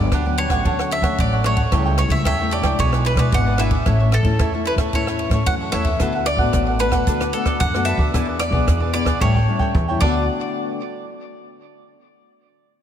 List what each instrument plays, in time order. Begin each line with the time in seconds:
Already playing: nylon-string guitar F#3 B3 D4, mandolin D5
0.12 upright bass D2, nylon-string guitar D3, cavaquinho D4 G4 B4 F#5, kick, cross-stick, ride
0.26 nylon-string guitar F#3 B3 D4, cavaquinho G4 B4 F#5
0.37 cavaquinho D4 G4 B4 F#5, mandolin C#5, ride
0.48 upright bass A1, nylon-string guitar F#3 A3 C#4, cavaquinho G4 B4 F#5, kick, cross-stick, ride
0.65 upright bass D2, nylon-string guitar D3, cavaquinho D4 A4 C#5 F#5, kick, ride
0.79 cavaquinho A4 C#5 F#5, cross-stick
0.91 mandolin E5, muted cavaquinho stroke, ride
1.02 upright bass D3, nylon-string guitar F#3 A3 C#4, cavaquinho A4 C#5 F#5, kick, cross-stick, ride
1.18 upright bass A1, nylon-string guitar A2, mandolin D5, kick, ride
1.32 cavaquinho A4 C#5 F#5
1.43 nylon-string guitar F#3 A3 C#4, cavaquinho D4 A4 C#5 F#5, mandolin C#5, cross-stick, ride
1.57 cavaquinho A4 C#5 F#5, kick, ride
1.72 upright bass C#2, nylon-string guitar C#3 G3 A3 E4, cavaquinho G4 A4 C#5 G5, kick, cross-stick, ride
1.85 cavaquinho A4 C#5 G5
1.98 mandolin C#5, muted cavaquinho stroke, cross-stick, ride
2.09 upright bass C#2, nylon-string guitar G3 A3 E4, mandolin E5, kick, ride
2.24 upright bass E2, nylon-string guitar C#3, cavaquinho G4 A4 C#5 G5, mandolin E5, kick, cross-stick, ride
2.39 nylon-string guitar G3 A3 E4, cavaquinho A4 C#5 G5
2.51 cavaquinho G4 A4 C#5 G5, mandolin D5, ride
2.62 upright bass C#2, nylon-string guitar G#3 D4 E4, cavaquinho A4 C#5 G5, kick, cross-stick, ride
2.79 upright bass B1, nylon-string guitar B2, cavaquinho E4 G#4 B4 D5, mandolin C#5, kick, ride
2.93 cavaquinho G#4 B4 D5, cross-stick
3.05 mandolin B4, ride
3.15 upright bass B2, nylon-string guitar G#3 D4 E4, cavaquinho G#4 B4 D5, mandolin B4, kick, cross-stick, ride
3.32 upright bass G#1, nylon-string guitar B2, mandolin F#5, kick, ride
3.46 cavaquinho G#4 B4 D5
3.58 nylon-string guitar G#3 D4 E4, cavaquinho E4 G#4 B4 D5, mandolin E5, cross-stick, ride
3.71 cavaquinho G#4 B4 D5, kick, ride
3.86 upright bass A1, nylon-string guitar A2 A3 C#4 E4, cavaquinho E4 A4 C#5 E5, kick, cross-stick, ride
4.00 cavaquinho A4 C#5 E5
4.12 mandolin A4, muted cavaquinho stroke, cross-stick, ride
4.23 upright bass A1, nylon-string guitar A3 C#4 E4, kick, ride
4.39 upright bass E2, nylon-string guitar E3, cavaquinho E4 A4 C#5 E5, kick, cross-stick, ride
4.53 nylon-string guitar A3 C#4 E4, cavaquinho A4 C#5 E5
4.65 cavaquinho E4 A4 C#5 E5, mandolin B4, ride
4.76 upright bass E2, nylon-string guitar A3 C#4 E4, cavaquinho C#5 E5, kick, cross-stick, ride
4.81 cavaquinho A4
4.93 nylon-string guitar A2 A3 C#4 E4, cavaquinho E4 A4 C#5 E5, mandolin C#5, kick, ride
5.07 cavaquinho A4 C#5 E5, cross-stick
5.19 muted cavaquinho stroke, ride
5.30 upright bass A2, nylon-string guitar A3 C#4 E4, cavaquinho C#5 E5, kick, cross-stick, ride
5.34 cavaquinho A4
5.46 upright bass F#2, nylon-string guitar E3, mandolin F#5, kick, ride
5.61 cavaquinho A4 C#5 E5
5.72 upright bass E2, nylon-string guitar A3 C#4 E4, cavaquinho E4 A4 C#5 E5, mandolin E5, cross-stick, ride
5.84 cavaquinho A4 C#5 E5, kick, ride
6.00 upright bass D2, nylon-string guitar D3 A3 B3 F#4, cavaquinho D4 A4 B4 F#5, kick, cross-stick, closed hi-hat
6.15 cavaquinho A4 B4 F#5
6.26 mandolin D5, muted cavaquinho stroke, cross-stick, closed hi-hat
6.36 upright bass A1, nylon-string guitar A3 B3 F#4, cavaquinho A4 B4 F#5, kick
6.53 upright bass A1, nylon-string guitar A2, kick, cross-stick, closed hi-hat
6.68 cavaquinho A4 B4 F#5
6.79 nylon-string guitar A3 B3 F#4, cavaquinho D4 A4 B4 F#5, mandolin B4, closed hi-hat
6.92 cavaquinho A4 B4 F#5, kick, cross-stick, closed hi-hat
7.07 upright bass D2, nylon-string guitar D3 A3 B3 F#4, cavaquinho D4 A4 B4 D5, kick, closed hi-hat
7.21 cavaquinho A4 B4 D5, cross-stick, closed hi-hat
7.33 nylon-string guitar A3 B3 F#4, mandolin A4, closed hi-hat
7.46 cavaquinho A4 B4 D5, kick, cross-stick, closed hi-hat
7.60 upright bass F#2, nylon-string guitar D3, mandolin F#5, kick, closed hi-hat
7.74 nylon-string guitar A3 B3 F#4, cavaquinho A4 B4 D5, cross-stick
7.85 cavaquinho D4 A4 B4 D5, mandolin E5, closed hi-hat
7.97 upright bass D2, cavaquinho A4 B4 D5, kick
8.14 upright bass E2, nylon-string guitar E3 B3 D4 G#4, cavaquinho E4 G#4 B4 D5, kick, cross-stick, closed hi-hat
8.28 cavaquinho G#4 B4 D5
8.39 mandolin D5, muted cavaquinho stroke, cross-stick, closed hi-hat
8.51 upright bass B1, nylon-string guitar B3 D4 G#4, cavaquinho G#4 B4 D5, kick
8.67 upright bass E2, nylon-string guitar B2, kick, cross-stick, closed hi-hat
8.81 cavaquinho G#4 B4 D5
8.93 nylon-string guitar B3 D4 G#4, cavaquinho E4 G#4 B4 D5, mandolin D5, closed hi-hat
9.05 cavaquinho G#4 B4 D5, kick, cross-stick, closed hi-hat
9.20 upright bass A1, nylon-string guitar A2 G3 C#4 E4, cavaquinho E4 A4 C#5 G5, mandolin C#5, kick
9.35 cavaquinho A4 C#5 G5, kick
9.48 nylon-string guitar G3 C#4 E4
9.59 cavaquinho A4 C#5 G5, kick
9.75 upright bass E2, nylon-string guitar E3, kick
9.88 nylon-string guitar G3 C#4 E4, cavaquinho A4 C#5 G5
10.00 upright bass D2, nylon-string guitar D3 A3 B3 F#4, cavaquinho D4 A4 B4 F#5, mandolin D5, kick, crash